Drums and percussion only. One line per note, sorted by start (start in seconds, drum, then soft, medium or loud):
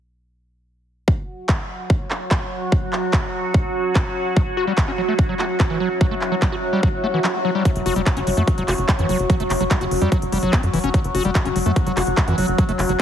1.08 kick loud
1.49 kick loud
1.49 clap loud
1.90 kick loud
2.11 clap medium
2.31 kick loud
2.31 clap loud
2.72 kick loud
2.93 clap medium
3.13 kick loud
3.13 clap loud
3.54 kick loud
3.95 kick loud
3.95 clap loud
4.37 kick loud
4.78 kick loud
4.78 clap loud
5.19 kick loud
5.39 clap medium
5.60 kick loud
5.60 clap loud
6.01 kick loud
6.22 clap medium
6.42 kick loud
6.42 clap loud
6.83 kick loud
7.24 clap loud
7.65 kick loud
7.65 closed hi-hat medium
7.76 closed hi-hat medium
7.86 open hi-hat loud
7.96 closed hi-hat medium
8.06 kick loud
8.06 clap loud
8.06 closed hi-hat medium
8.17 closed hi-hat medium
8.27 open hi-hat loud
8.37 closed hi-hat medium
8.48 kick loud
8.48 closed hi-hat medium
8.58 closed hi-hat medium
8.68 clap medium
8.68 open hi-hat loud
8.78 closed hi-hat medium
8.89 kick loud
8.89 clap loud
8.89 closed hi-hat medium
8.99 closed hi-hat medium
9.09 open hi-hat loud
9.19 closed hi-hat medium
9.30 kick loud
9.30 closed hi-hat medium
9.40 closed hi-hat medium
9.50 clap medium
9.50 open hi-hat loud
9.61 closed hi-hat medium
9.71 kick loud
9.71 clap loud
9.71 closed hi-hat medium
9.81 closed hi-hat medium
9.91 open hi-hat loud
10.02 closed hi-hat medium
10.12 kick loud
10.12 closed hi-hat medium
10.22 closed hi-hat medium
10.32 open hi-hat loud
10.43 closed hi-hat medium
10.53 kick loud
10.53 clap loud
10.53 closed hi-hat medium
10.63 closed hi-hat medium
10.74 open hi-hat loud
10.84 closed hi-hat medium
10.94 kick loud
10.94 closed hi-hat medium
11.04 closed hi-hat medium
11.15 open hi-hat loud
11.25 closed hi-hat medium
11.35 kick loud
11.35 clap loud
11.35 closed hi-hat medium
11.45 closed hi-hat medium
11.56 open hi-hat loud
11.66 closed hi-hat medium
11.76 kick loud
11.76 closed hi-hat medium
11.87 closed hi-hat medium
11.97 clap medium
11.97 open hi-hat loud
12.07 closed hi-hat medium
12.17 kick loud
12.17 clap loud
12.17 closed hi-hat medium
12.28 closed hi-hat medium
12.38 open hi-hat loud
12.48 closed hi-hat medium
12.58 kick loud
12.58 closed hi-hat medium
12.69 closed hi-hat medium
12.79 clap medium
12.79 open hi-hat loud
12.89 closed hi-hat medium